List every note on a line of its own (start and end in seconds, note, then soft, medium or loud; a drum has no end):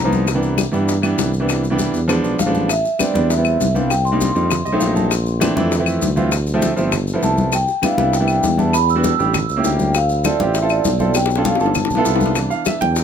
0.00 0.67 C2 medium
0.04 0.26 F3 medium
0.04 0.26 A#3 medium
0.04 0.26 B3 medium
0.04 0.26 D#4 medium
0.13 high conga medium
0.13 maracas soft
0.27 high bongo medium
0.27 claves medium
0.27 maracas medium
0.34 0.61 E3 medium
0.34 0.61 G3 medium
0.34 0.62 B3 medium
0.34 0.62 D4 medium
0.43 high conga soft
0.43 maracas soft
0.58 high bongo medium
0.58 high conga medium
0.58 claves medium
0.58 maracas medium
0.72 1.15 G2 medium
0.72 0.93 E3 medium
0.72 0.94 G3 medium
0.72 0.94 B3 medium
0.72 0.94 D4 medium
0.72 high conga soft
0.72 maracas soft
0.88 high bongo medium
0.88 high conga soft
0.88 maracas medium
1.02 1.29 E3 medium
1.02 1.29 G3 medium
1.02 1.30 B3 medium
1.02 1.30 D4 medium
1.02 high conga soft
1.02 claves medium
1.02 maracas soft
1.18 1.88 C2 medium
1.18 high bongo medium
1.18 low bongo medium
1.18 high conga medium
1.18 maracas medium
1.34 high conga soft
1.34 maracas soft
1.40 1.62 E3 medium
1.40 1.62 G3 medium
1.40 1.62 B3 medium
1.40 1.62 D4 medium
1.49 high bongo medium
1.49 high conga soft
1.49 claves medium
1.49 maracas medium
1.64 high bongo soft
1.64 high conga soft
1.64 maracas soft
1.70 1.97 E3 medium
1.70 1.97 G3 medium
1.70 1.98 B3 medium
1.70 1.98 D4 loud
1.79 high bongo medium
1.79 high conga medium
1.79 maracas medium
1.94 2.22 E2 medium
1.94 high bongo soft
1.94 high conga soft
1.94 maracas soft
2.08 2.35 F3 medium
2.08 2.35 G#3 medium
2.08 2.35 B3 medium
2.08 2.36 D4 loud
2.08 high bongo medium
2.08 high conga soft
2.08 claves medium
2.08 maracas medium
2.24 2.38 B1 medium
2.24 2.38 D5 medium
2.24 high bongo soft
2.24 high conga soft
2.24 maracas soft
2.39 2.83 A1 medium
2.39 2.53 F5 medium
2.39 2.68 F5 medium
2.39 high bongo medium
2.39 low bongo medium
2.39 high conga medium
2.39 maracas medium
2.46 2.68 F3 medium
2.46 2.68 G#3 medium
2.46 2.68 B3 medium
2.46 2.68 D4 medium
2.54 2.68 A5 medium
2.54 high conga medium
2.54 maracas soft
2.69 3.01 E5 loud
2.69 high bongo medium
2.69 high conga soft
2.69 claves medium
2.69 maracas medium
2.85 high bongo soft
2.85 high conga soft
2.85 maracas soft
2.99 3.10 G3 medium
2.99 3.10 B3 medium
2.99 3.10 C4 medium
2.99 3.10 D4 medium
2.99 3.32 D5 medium
2.99 high bongo medium
2.99 high conga medium
2.99 claves medium
2.99 maracas medium
3.14 3.57 E2 medium
3.14 3.30 G3 medium
3.14 3.30 B3 medium
3.14 3.30 C4 medium
3.14 3.31 D4 medium
3.14 high conga medium
3.14 maracas soft
3.30 3.72 E5 medium
3.30 high bongo medium
3.30 high conga soft
3.30 maracas medium
3.37 3.64 G3 medium
3.37 3.64 B3 medium
3.37 3.64 C4 medium
3.37 3.64 E4 medium
3.45 high bongo soft
3.45 high conga soft
3.45 claves medium
3.45 maracas soft
3.60 4.30 C2 loud
3.60 high bongo soft
3.60 low bongo medium
3.60 high conga medium
3.60 maracas medium
3.75 3.90 G3 medium
3.75 3.90 B3 medium
3.75 3.90 C4 medium
3.75 3.91 D4 medium
3.75 3.89 F5 medium
3.75 high bongo soft
3.75 high conga medium
3.75 maracas soft
3.90 4.04 G5 loud
3.90 high bongo medium
3.90 high conga soft
3.90 claves medium
3.90 maracas medium
4.05 4.92 C6 loud
4.05 high bongo soft
4.05 high conga soft
4.05 maracas soft
4.12 4.28 G3 medium
4.12 4.28 A#3 medium
4.12 4.29 D4 medium
4.12 4.29 D#4 medium
4.21 high bongo medium
4.21 high conga medium
4.21 maracas medium
4.35 4.63 F2 medium
4.35 4.50 G3 medium
4.35 4.50 A#3 medium
4.35 4.51 D4 medium
4.35 4.51 D#4 medium
4.35 maracas soft
4.51 high bongo medium
4.51 high conga soft
4.51 low conga medium
4.51 claves medium
4.51 maracas medium
4.65 4.80 C2 medium
4.65 4.80 D#5 medium
4.65 high bongo soft
4.65 high conga soft
4.65 maracas soft
4.72 5.11 F#3 medium
4.72 5.11 A3 medium
4.72 5.11 C4 medium
4.72 5.11 D#4 loud
4.80 5.51 A#1 loud
4.80 4.94 F5 medium
4.80 high bongo soft
4.80 low bongo medium
4.80 high conga soft
4.80 maracas medium
4.96 5.10 A5 medium
4.96 high bongo soft
4.96 high conga medium
4.96 maracas soft
5.11 high bongo medium
5.11 claves medium
5.11 maracas medium
5.26 high bongo soft
5.26 high conga soft
5.26 maracas soft
5.40 5.51 E3 medium
5.40 5.51 A3 medium
5.40 5.52 C4 medium
5.40 5.52 D4 loud
5.40 high bongo medium
5.40 high conga loud
5.40 claves medium
5.40 maracas medium
5.56 5.98 F2 medium
5.56 5.72 E3 loud
5.56 5.72 A3 medium
5.56 5.72 C4 medium
5.56 5.73 D4 loud
5.56 high conga medium
5.56 maracas soft
5.72 high bongo medium
5.72 high conga soft
5.72 maracas medium
5.78 6.05 E3 medium
5.78 6.05 A3 medium
5.78 6.06 C4 medium
5.78 6.06 E4 loud
5.86 high bongo soft
5.86 high conga soft
5.86 claves medium
5.86 maracas soft
6.01 6.72 D2 medium
6.01 high bongo soft
6.01 low bongo medium
6.01 high conga medium
6.01 maracas medium
6.16 6.32 E3 medium
6.16 6.32 A3 medium
6.16 6.32 C4 medium
6.16 6.32 F4 medium
6.16 high bongo soft
6.16 high conga medium
6.16 maracas soft
6.32 high bongo medium
6.32 high conga soft
6.32 claves medium
6.32 maracas medium
6.47 high bongo soft
6.47 high conga soft
6.47 maracas soft
6.54 6.70 F3 loud
6.54 6.70 A3 medium
6.54 6.71 C4 medium
6.54 6.71 E4 loud
6.62 high bongo medium
6.62 high conga medium
6.62 maracas medium
6.77 7.20 G1 medium
6.77 6.92 F3 medium
6.77 6.92 A3 medium
6.77 6.93 C4 medium
6.77 6.93 E4 medium
6.77 maracas soft
6.92 high bongo medium
6.92 high conga soft
6.92 low conga medium
6.92 claves medium
6.92 maracas medium
7.07 high bongo soft
7.07 high conga soft
7.07 maracas soft
7.14 7.52 F3 medium
7.14 7.52 A3 medium
7.14 7.53 B3 medium
7.14 7.53 E4 medium
7.23 7.66 C2 medium
7.23 7.51 A5 medium
7.23 high bongo soft
7.23 low bongo medium
7.23 high conga soft
7.23 maracas medium
7.38 high bongo soft
7.38 high conga medium
7.38 maracas soft
7.52 7.85 G5 loud
7.52 high bongo medium
7.52 high conga soft
7.52 claves medium
7.52 maracas medium
7.68 high bongo soft
7.68 high conga soft
7.68 maracas soft
7.82 7.93 G3 medium
7.82 7.93 B3 medium
7.82 7.93 D4 medium
7.82 7.94 E4 medium
7.82 8.15 F5 medium
7.82 high bongo medium
7.82 high conga loud
7.82 claves medium
7.82 maracas medium
7.97 8.40 C2 medium
7.97 8.14 G3 medium
7.97 8.14 B3 medium
7.97 8.14 D4 medium
7.97 8.14 E4 medium
7.97 high conga medium
7.97 maracas soft
8.13 8.56 G5 loud
8.13 high bongo medium
8.13 maracas medium
8.20 8.47 G3 medium
8.20 8.47 B3 medium
8.20 8.47 D4 medium
8.20 8.47 E4 medium
8.28 high bongo soft
8.28 high conga soft
8.28 claves medium
8.28 maracas soft
8.43 9.14 E2 medium
8.43 high bongo soft
8.43 low bongo medium
8.43 high conga medium
8.43 maracas medium
8.57 8.73 G3 medium
8.57 8.73 B3 medium
8.57 8.73 D4 medium
8.57 8.74 E4 medium
8.57 8.73 A5 medium
8.57 high bongo soft
8.57 high conga medium
8.57 maracas soft
8.73 8.81 B5 loud
8.73 high bongo medium
8.73 claves medium
8.73 maracas medium
8.89 9.67 E6 loud
8.89 high bongo soft
8.89 high conga soft
8.89 maracas soft
8.95 9.12 G3 medium
8.95 9.12 B3 medium
8.95 9.12 D4 medium
8.95 9.12 F#4 medium
9.04 high bongo medium
9.04 high conga loud
9.04 maracas medium
9.19 9.47 A1 medium
9.19 9.34 G3 medium
9.19 9.34 B3 medium
9.19 9.34 D4 medium
9.19 9.34 G4 medium
9.19 maracas soft
9.34 high bongo medium
9.34 high conga soft
9.34 low conga medium
9.34 claves medium
9.34 maracas medium
9.49 9.64 C#2 medium
9.49 high bongo soft
9.49 high conga soft
9.49 maracas soft
9.56 9.94 A#3 medium
9.56 9.95 C#4 medium
9.56 9.95 E4 medium
9.56 9.95 G4 medium
9.64 10.35 D2 loud
9.64 9.95 G5 loud
9.64 high bongo soft
9.64 low bongo medium
9.64 high conga soft
9.64 maracas medium
9.79 high bongo soft
9.79 high conga medium
9.79 maracas soft
9.94 10.23 F5 loud
9.94 high bongo medium
9.94 claves medium
9.94 maracas medium
10.09 high bongo soft
10.09 high conga soft
10.09 maracas soft
10.24 10.35 C4 medium
10.24 10.35 E4 medium
10.24 10.35 F4 medium
10.24 10.36 A4 medium
10.24 10.56 D5 medium
10.24 high bongo medium
10.24 high conga loud
10.24 claves medium
10.24 maracas medium
10.39 10.82 A1 medium
10.39 10.55 C4 medium
10.39 10.56 E4 medium
10.39 10.56 F4 medium
10.39 10.56 G4 medium
10.39 high conga loud
10.39 maracas soft
10.54 10.71 E5 medium
10.54 high bongo medium
10.54 high conga soft
10.54 maracas medium
10.62 10.88 C4 medium
10.62 10.89 E4 medium
10.62 10.89 F4 medium
10.62 10.89 A4 medium
10.69 11.17 D5 medium
10.69 high bongo soft
10.69 high conga soft
10.69 claves medium
10.69 maracas soft
10.85 11.55 B1 loud
10.85 high bongo soft
10.85 low bongo medium
10.85 high conga medium
10.85 maracas medium
10.99 11.15 C4 medium
10.99 11.15 E4 medium
10.99 11.15 F4 medium
10.99 11.15 A4 medium
10.99 high bongo soft
10.99 high conga medium
10.99 maracas soft
11.14 11.44 G5 loud
11.14 high bongo loud
11.14 high conga soft
11.14 claves medium
11.14 maracas medium
11.26 high bongo loud
11.30 high conga soft
11.30 maracas soft
11.35 11.53 C#4 medium
11.35 11.53 D4 medium
11.35 11.54 F4 medium
11.35 11.54 A4 medium
11.35 high bongo medium
11.45 11.61 F5 medium
11.45 low bongo medium
11.45 high conga loud
11.45 maracas medium
11.55 high bongo loud
11.60 11.88 G1 medium
11.60 11.75 C#4 medium
11.60 11.76 D4 medium
11.60 11.76 F4 medium
11.60 11.76 A4 medium
11.60 12.17 A5 medium
11.60 maracas soft
11.66 low bongo medium
11.75 low bongo medium
11.75 high conga soft
11.75 low conga medium
11.75 claves medium
11.75 maracas medium
11.85 low bongo loud
11.90 12.05 B1 medium
11.90 high conga soft
11.90 low conga medium
11.90 maracas soft
11.95 12.34 B3 loud
11.95 12.36 E4 medium
11.95 12.36 F4 medium
11.95 12.36 A4 loud
11.95 low bongo medium
12.05 12.50 C2 medium
12.05 low bongo medium
12.05 high conga soft
12.05 maracas medium
12.16 low bongo loud
12.21 high conga medium
12.21 maracas soft
12.26 low bongo loud
12.35 13.04 E3 medium
12.35 13.04 B3 soft
12.35 13.04 D4 medium
12.35 high bongo medium
12.35 claves medium
12.35 maracas medium
12.50 12.65 F5 medium
12.50 high bongo soft
12.50 high conga soft
12.50 maracas soft
12.65 12.81 E5 medium
12.65 high bongo medium
12.65 high conga loud
12.65 claves medium
12.65 maracas medium
12.81 13.04 E2 medium
12.81 13.04 G5 loud
12.81 high conga medium
12.81 maracas soft
12.96 high bongo medium
12.96 high conga soft
12.96 maracas medium